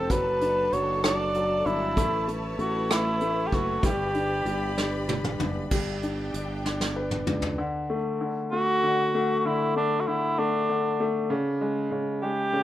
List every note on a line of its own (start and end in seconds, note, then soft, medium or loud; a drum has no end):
0.00 0.12 F3 medium
0.00 0.12 C4 soft
0.00 0.12 A4 medium
0.00 3.80 A5 medium
0.10 0.69 F#1 medium
0.10 0.71 F#3 medium
0.10 1.95 D4 medium
0.10 1.95 F#4 medium
0.10 1.95 A4 medium
0.10 0.75 B4 medium
0.10 kick medium
0.10 closed hi-hat medium
0.41 1.02 D4 soft
0.41 closed hi-hat soft
0.73 1.62 F#1 medium
0.73 1.34 F#3 medium
0.73 1.04 C#5 medium
0.73 closed hi-hat soft
1.04 1.64 D4 soft
1.04 1.68 D5 medium
1.04 cross-stick loud
1.04 closed hi-hat medium
1.34 1.95 F#3 soft
1.34 closed hi-hat soft
1.66 1.95 G1 medium
1.66 1.96 D4 medium
1.66 2.32 E4 loud
1.66 closed hi-hat soft
1.97 2.55 A1 medium
1.97 2.26 A3 medium
1.97 3.82 E4 medium
1.97 5.68 B4 medium
1.97 3.82 C#5 medium
1.97 kick medium
1.97 closed hi-hat medium
2.28 2.57 A3 soft
2.28 closed hi-hat soft
2.59 3.48 A1 medium
2.59 2.89 A3 soft
2.59 2.93 F#4 medium
2.59 closed hi-hat soft
2.90 3.20 A3 soft
2.90 3.48 E4 medium
2.90 cross-stick loud
2.90 closed hi-hat medium
3.20 3.51 A3 medium
3.20 closed hi-hat soft
3.47 3.56 G4 medium
3.52 3.82 F#1 medium
3.52 3.83 A3 soft
3.52 3.85 F#4 medium
3.52 kick medium
3.52 closed hi-hat soft
3.83 4.42 G1 medium
3.83 4.44 G3 medium
3.83 5.70 G4 medium
3.83 5.06 G4 medium
3.83 5.70 D5 medium
3.83 5.70 B5 medium
3.83 kick loud
3.83 closed hi-hat medium
4.15 4.76 D4 soft
4.15 closed hi-hat soft
4.45 5.36 G1 medium
4.45 5.07 G3 medium
4.45 closed hi-hat soft
4.78 5.39 D4 soft
4.78 snare soft
5.09 5.70 G3 soft
5.09 high tom medium
5.24 mid tom medium
5.40 5.70 F#1 medium
5.40 5.71 D4 medium
5.40 mid tom medium
5.71 6.30 G1 medium
5.71 7.54 G3 medium
5.71 7.57 B3 medium
5.71 7.57 D4 medium
5.71 7.57 G4 medium
5.71 7.57 D5 medium
5.71 7.57 G5 medium
5.71 kick medium
5.71 crash medium
6.03 6.64 D4 soft
6.03 closed hi-hat soft
6.34 7.23 G1 medium
6.34 7.55 D5 medium
6.34 closed hi-hat medium
6.65 7.25 D4 soft
6.65 snare medium
6.81 snare soft
6.96 7.57 B4 soft
7.11 mid tom medium
7.27 7.56 C#2 medium
7.27 7.57 D4 soft
7.27 mid tom medium
7.42 floor tom medium
7.58 8.19 D3 medium
7.90 8.51 A3 medium
8.21 8.82 D3 medium
8.52 9.13 A3 medium
8.52 9.39 F#4 loud
8.83 9.44 D3 medium
9.14 9.75 A3 medium
9.39 9.47 F#4 medium
9.45 10.06 D3 medium
9.45 9.76 E4 loud
9.76 10.37 A3 medium
9.76 10.02 D4 medium
10.01 10.08 F#4 medium
10.07 10.68 D3 medium
10.07 10.41 E4 medium
10.38 10.99 A3 medium
10.38 11.07 D4 medium
10.69 11.28 D3 medium
11.00 11.29 A3 medium
11.30 11.90 C#3 medium
11.61 12.21 G#3 medium
11.91 12.52 C#3 medium
12.23 12.63 G#3 medium
12.23 12.63 G4 loud
12.53 12.63 C#3 medium